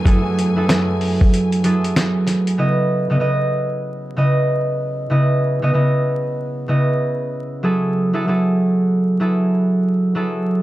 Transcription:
Already playing: string section F#2 E3 A3 G#5
0.04 harp F#3 E4 G#4 A4, kick, closed hi-hat
0.39 closed hi-hat
0.56 harp F#3 E4 G#4 A4
0.68 harp F#3 E4 G#4 A4, snare, closed hi-hat
1.01 open hi-hat
1.21 kick
1.34 closed hi-hat
1.52 closed hi-hat
1.64 harp F#3 E4 G#4 A4, closed hi-hat
1.84 closed hi-hat
1.96 snare, closed hi-hat
2.27 snare, closed hi-hat
2.47 closed hi-hat
2.58 harp C#3 B3 E4 D#5
3.10 harp C#3 B3 E4 D#5
3.19 harp C#3 B3 E4 D#5
4.16 harp C#3 B3 E4 D#5
5.10 harp C#3 B3 E4 D#5
5.62 harp C#3 B3 E4 D#5
5.74 harp C#3 B3 E4 D#5
6.68 harp C#3 B3 E4 D#5
7.63 harp F#3 E4 G#4 A4
8.13 harp F#3 E4 G#4 A4
8.28 harp F#3 E4 G#4 A4
9.20 harp F#3 E4 G#4 A4
10.15 harp F#3 E4 G#4 A4

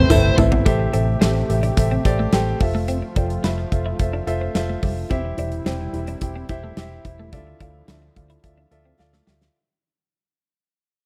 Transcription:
Already playing: grand piano A2 E4 A4 B4 C5 E5, analog synth pad C3 A3 C4, lead electric guitar C5
0.10 fingered electric bass G1, grand piano E4 A4 B4 C5 E5, muted clean electric guitar stroke, mid tom, tambourine
0.38 fingered electric bass G#1, clean electric guitar A3, grand piano E4 A4 B4 C5 E5, floor tom, tambourine
0.52 clean electric guitar B3, floor tom
0.65 fingered electric bass A1, grand piano A2 G4 A4 C5 E5, analog synth pad C3 A3 G4, clean electric guitar A3, kick, closed hi-hat
0.79 muted clean electric guitar stroke
0.93 fingered electric bass A1, clean electric guitar C4, grand piano G4 A4 C5 E5, closed hi-hat
1.21 fingered electric bass A1, clean electric guitar C4, grand piano G4 A4 C5 E5, snare, closed hi-hat
1.35 muted clean electric guitar stroke
1.49 fingered electric bass A1, grand piano G4 A4 C5 E5, closed hi-hat
1.63 clean electric guitar D4, closed hi-hat
1.77 fingered electric bass A1, grand piano G4 A4 C5 E5, kick, closed hi-hat
1.91 clean electric guitar C4
2.05 fingered electric bass A1, grand piano G4 A4 C5 D5, muted clean electric guitar stroke, kick, closed hi-hat
2.19 clean electric guitar A3
2.32 fingered electric bass A1, clean electric guitar G3, grand piano G4 A4 C5 G5, snare, closed hi-hat
2.60 fingered electric bass F1, analog synth pad F3 F4, grand piano F4 A4 C5 E5, muted clean electric guitar stroke, kick, open hi-hat
2.75 clean electric guitar A3
2.88 clean electric guitar C4, closed hi-hat
3.02 muted clean electric guitar stroke
3.16 fingered electric bass F1, clean electric guitar D4, grand piano F4 A4 C5 G5, kick, closed hi-hat
3.30 closed hi-hat
3.44 fingered electric bass F1, clean electric guitar E4, grand piano F4 A4 C5 E5, snare, closed hi-hat
3.58 muted clean electric guitar stroke
3.72 fingered electric bass F1, grand piano F4 A4 C5 E5, kick, closed hi-hat
3.86 clean electric guitar E4
3.99 fingered electric bass F1, grand piano F4 A4 C5 E5, kick, closed hi-hat
4.13 clean electric guitar D4
4.27 fingered electric bass F1, grand piano F4 A4 C5 E5, muted clean electric guitar stroke, closed hi-hat
4.41 clean electric guitar C4
4.55 fingered electric bass F1, grand piano F4 A4 C5 E5, muted clean electric guitar stroke, snare, closed hi-hat
4.69 clean electric guitar A3
4.82 fingered electric bass F1, clean electric guitar G3, grand piano F4 A4 C5 E5, kick, open hi-hat
5.10 fingered electric bass E1, analog synth pad C3 G3 E4, grand piano E3 E4 G4 C5 E5, clean electric guitar C4, kick, closed hi-hat
5.25 muted clean electric guitar stroke
5.37 fingered electric bass E1, clean electric guitar D4, grand piano E4 G4 C5 E5, closed hi-hat
5.52 closed hi-hat
5.65 fingered electric bass E1, clean electric guitar C4, grand piano E4 G4 C5 G5, snare, closed hi-hat
5.81 muted clean electric guitar stroke
5.93 fingered electric bass E1, grand piano E4 G4 C5 E5, closed hi-hat
6.07 clean electric guitar D4, closed hi-hat
6.21 fingered electric bass E1, grand piano E4 G4 C5 G5, kick, closed hi-hat
6.36 clean electric guitar C4
6.49 fingered electric bass E1, grand piano E4 G4 C5 E5, muted clean electric guitar stroke, kick, closed hi-hat
6.64 clean electric guitar A3
6.77 fingered electric bass E1, clean electric guitar G3, grand piano E4 G4 C5 E5, snare, closed hi-hat
7.05 fingered electric bass E1, grand piano E4 G4 C5 E5, muted clean electric guitar stroke, kick, closed hi-hat
7.19 clean electric guitar A3
7.32 fingered electric bass D2, analog synth pad D3 F3, grand piano D3 F4 A4 D5 E5, clean electric guitar D4, kick, closed hi-hat
7.47 muted clean electric guitar stroke
7.60 fingered electric bass D2, clean electric guitar D4, grand piano F4 A4 D5 F5, kick, closed hi-hat
7.88 fingered electric bass D2, clean electric guitar E4, grand piano F4 A4 D5 E5, snare, closed hi-hat
8.02 muted clean electric guitar stroke
8.16 fingered electric bass D2, grand piano F4 A4 D5 F5, kick, closed hi-hat
8.30 clean electric guitar E4, closed hi-hat
8.43 fingered electric bass D2, grand piano F4 A4 D5 E5, kick, closed hi-hat
8.58 clean electric guitar D4
8.71 fingered electric bass D2, grand piano F4 A4 D5 E5, muted clean electric guitar stroke, closed hi-hat
8.85 clean electric guitar C4
8.99 fingered electric bass D2, grand piano F4 A4 D5 F5, muted clean electric guitar stroke, snare
9.13 clean electric guitar A3, snare
9.27 fingered electric bass D2, clean electric guitar G3, grand piano F4 A4 D5 E5, snare
9.41 snare

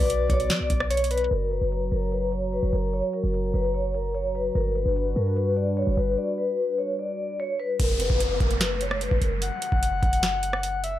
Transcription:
Already playing: analog synth pad B3 F#4 B4 D5, vibraphone B4, soft synth lead D5
0.00 808-style bass B1
0.10 closed hi-hat
0.30 808-style bass B1, vibraphone C#5, kick, closed hi-hat
0.40 closed hi-hat
0.50 808-style bass F#3, vibraphone D5, snare, closed hi-hat
0.60 808-style bass B1
0.70 808-style bass B1, kick, closed hi-hat
0.80 cross-stick
0.90 soft synth lead C#5, vibraphone C#5, closed hi-hat
0.97 closed hi-hat
1.04 closed hi-hat
1.11 soft synth lead B4, vibraphone B4, closed hi-hat
1.18 closed hi-hat
1.24 closed hi-hat
1.31 808-style bass F#1, analog synth pad F#3 F#4 C#5 A#5, vibraphone A#4, closed hi-hat
1.51 vibraphone B4, closed hi-hat
1.61 808-style bass F#1
1.72 closed hi-hat
1.92 808-style bass F#1, vibraphone A#4, closed hi-hat
2.02 closed hi-hat
2.12 vibraphone B4, closed hi-hat
2.32 vibraphone C#5, closed hi-hat
2.53 vibraphone B4, closed hi-hat
2.63 808-style bass F#1
2.73 808-style bass F#1, vibraphone A#4, closed hi-hat
2.93 vibraphone C#5, closed hi-hat
3.13 vibraphone A#4, closed hi-hat
3.24 808-style bass F#1
3.34 closed hi-hat
3.54 808-style bass F#1, vibraphone B4, closed hi-hat
3.64 closed hi-hat
3.74 vibraphone C#5, closed hi-hat
3.94 vibraphone A#4, closed hi-hat
4.14 vibraphone C#5, closed hi-hat
4.35 vibraphone B4, closed hi-hat
4.55 808-style bass G1, analog synth pad G3 D4 F#4 B4, vibraphone A#4, closed hi-hat
4.75 vibraphone B4, closed hi-hat
4.86 808-style bass G1
4.96 closed hi-hat
5.16 808-style bass G2, vibraphone A#4, closed hi-hat
5.26 closed hi-hat
5.36 vibraphone B4, closed hi-hat
5.56 vibraphone D5, closed hi-hat
5.77 vibraphone C#5, closed hi-hat
5.87 808-style bass G1
5.97 808-style bass G1, vibraphone B4, closed hi-hat
6.18 vibraphone D5
6.38 vibraphone B4
6.78 vibraphone C#5
6.99 vibraphone D5
7.40 vibraphone C#5
7.60 vibraphone B4
7.80 808-style bass F#1, vibraphone A#4, kick, closed hi-hat, crash, downlifter
8.00 vibraphone B4, closed hi-hat
8.10 808-style bass F#1, kick
8.20 closed hi-hat
8.40 808-style bass F#1, vibraphone A#4, kick, closed hi-hat
8.51 closed hi-hat
8.61 vibraphone B4, snare, closed hi-hat
8.81 vibraphone C#5, closed hi-hat
8.91 cross-stick
9.01 vibraphone B4, closed hi-hat
9.11 808-style bass F#1, kick
9.21 808-style bass F#1, vibraphone A#4, closed hi-hat
9.42 soft synth lead F#5, closed hi-hat
9.62 closed hi-hat
9.72 808-style bass F#1, kick
9.83 closed hi-hat
10.03 808-style bass F#1, kick, closed hi-hat
10.13 closed hi-hat
10.23 snare, closed hi-hat
10.43 closed hi-hat
10.53 cross-stick
10.63 closed hi-hat
10.84 soft synth lead E5, closed hi-hat

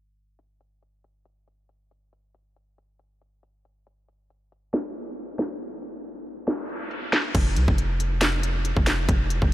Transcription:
0.39 closed hi-hat
0.61 closed hi-hat
0.83 closed hi-hat
1.04 closed hi-hat
1.26 closed hi-hat
1.48 closed hi-hat
1.69 closed hi-hat
1.91 closed hi-hat
2.13 closed hi-hat
2.35 closed hi-hat
2.56 closed hi-hat
2.78 closed hi-hat
2.99 closed hi-hat
3.22 closed hi-hat
3.43 closed hi-hat
3.65 closed hi-hat
3.87 closed hi-hat
4.09 closed hi-hat
4.30 closed hi-hat
4.52 closed hi-hat
4.73 finger snap, snare, closed hi-hat
4.96 closed hi-hat
5.17 closed hi-hat
5.39 finger snap, snare
5.61 closed hi-hat
5.82 closed hi-hat
6.04 closed hi-hat
6.26 closed hi-hat
6.47 finger snap, snare, closed hi-hat
6.69 closed hi-hat
6.91 closed hi-hat
7.13 finger snap, snare, closed hi-hat
7.35 808-style bass F1, kick, closed hi-hat, crash
7.56 808-style bass C2, closed hi-hat
7.68 808-style bass F1, kick
7.78 closed hi-hat
8.00 closed hi-hat
8.21 finger snap, snare, closed hi-hat
8.43 closed hi-hat
8.65 closed hi-hat
8.77 808-style bass F1, kick
8.86 finger snap, snare, closed hi-hat
9.09 808-style bass F1, kick, closed hi-hat
9.30 closed hi-hat
9.42 808-style bass F1, kick

